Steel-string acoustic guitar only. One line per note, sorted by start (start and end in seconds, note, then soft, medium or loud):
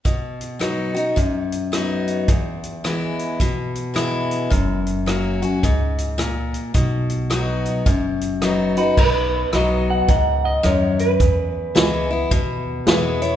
0.05 1.13 B2 medium
0.59 0.94 F#3 soft
0.59 0.94 B3 soft
0.59 0.94 D#4 medium
0.59 0.93 F#4 medium
0.95 1.16 D#4 soft
0.95 1.15 F#4 medium
1.16 2.24 F#2 medium
1.72 2.26 F#3 soft
1.72 2.26 B3 medium
1.72 2.27 D#4 medium
1.72 2.27 F#4 medium
2.29 3.36 E2 medium
2.84 3.38 E3 soft
2.84 3.38 G#3 soft
2.84 3.39 B3 soft
2.84 3.39 E4 medium
3.41 4.48 B2 medium
3.94 4.49 E3 medium
3.94 4.49 G#3 medium
3.94 4.49 B3 medium
3.94 4.50 E4 medium
4.50 5.58 F#2 medium
5.06 5.40 F#3 medium
5.06 5.41 A#3 medium
5.06 5.41 C#4 soft
5.06 5.41 F#4 medium
5.42 5.63 C#4 soft
5.42 5.62 F#4 medium
5.64 6.17 G#2 medium
6.18 6.72 A#2 medium
6.74 7.82 B2 medium
7.30 7.84 F#3 soft
7.30 7.84 B3 soft
7.30 7.85 D#4 medium
7.30 7.85 F#4 medium
7.86 8.93 F#2 medium
8.42 8.75 F#3 medium
8.42 8.76 B3 medium
8.42 8.76 D#4 medium
8.42 8.76 F#4 medium
8.77 8.98 D#4 soft
8.77 8.97 F#4 medium
8.98 10.05 B2 medium
9.53 10.07 F#3 soft
9.53 10.07 B3 medium
9.53 10.08 D#4 medium
9.53 10.08 F#4 medium
10.08 10.62 G#2 medium
10.63 11.17 F#2 medium
11.20 12.27 E2 medium
11.75 12.09 E3 medium
11.75 12.09 G#3 medium
11.75 12.09 B3 medium
11.75 12.09 E4 medium
12.11 12.32 B3 soft
12.11 12.30 E4 medium
12.31 13.36 B2 medium
12.87 13.20 E3 medium
12.87 13.21 G#3 medium
12.87 13.21 B3 medium
12.87 13.20 E4 medium
13.22 13.36 B3 soft
13.22 13.36 E4 soft